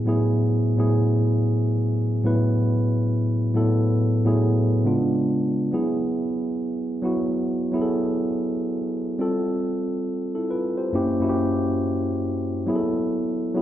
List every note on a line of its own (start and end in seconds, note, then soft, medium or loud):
0.00 0.05 A2 medium
0.00 0.06 F#3 medium
0.00 0.07 B3 medium
0.00 0.07 E4 medium
0.00 0.09 G#4 medium
0.05 0.64 A2 medium
0.05 0.64 F#3 medium
0.05 0.65 B3 medium
0.05 0.65 E4 medium
0.05 0.66 G#4 medium
0.77 2.06 A2 medium
0.77 2.06 F#3 medium
0.77 2.06 B3 medium
0.77 2.07 E4 medium
0.77 2.07 G#4 medium
2.23 3.39 A2 medium
2.23 3.39 F#3 medium
2.23 3.40 B3 medium
2.23 3.40 E4 medium
2.23 3.41 B4 medium
3.54 4.12 A2 medium
3.54 4.12 F#3 medium
3.54 4.13 B3 medium
3.54 4.13 E4 medium
3.54 4.14 A4 medium
4.24 4.84 A2 medium
4.24 4.84 F#3 medium
4.24 4.85 B3 medium
4.24 4.85 E4 medium
4.24 4.85 G#4 medium
4.85 5.62 C#3 medium
4.85 5.62 G#3 medium
4.85 5.62 B3 medium
4.85 5.63 D4 medium
4.85 5.63 F4 medium
5.72 6.87 F#3 medium
5.72 6.88 B3 medium
5.72 6.88 E4 medium
5.72 6.89 G#4 medium
7.02 7.60 F#3 medium
7.02 7.61 B3 medium
7.02 7.61 E4 medium
7.02 7.62 F#4 medium
7.72 9.01 F#3 medium
7.72 9.01 B3 medium
7.72 9.02 E4 medium
7.72 7.79 G#4 medium
7.82 9.06 A4 medium
9.19 10.35 G3 medium
9.19 10.35 C4 medium
9.19 10.07 F4 medium
9.19 10.07 A4 medium
10.35 10.50 E4 soft
10.35 10.49 A4 medium
10.51 10.76 F4 soft
10.51 10.76 B4 medium
10.78 10.94 G4 soft
10.78 11.18 C5 medium
10.93 11.16 F#2 medium
10.93 11.16 A#3 medium
10.93 11.17 C#4 medium
10.93 11.17 E4 medium
10.93 11.17 G4 medium
11.20 12.49 F#2 medium
11.20 12.49 A#3 medium
11.20 12.50 C#4 medium
11.20 12.50 E4 medium
11.20 11.26 F#4 medium
11.29 12.53 G4 medium
12.66 13.44 F#3 medium
12.66 13.44 B3 medium
12.66 13.45 E4 medium
12.66 12.76 G#4 medium
12.76 13.48 A4 medium
13.55 13.62 F#3 medium
13.55 13.62 B3 medium
13.55 13.62 E4 medium
13.55 13.62 G#4 medium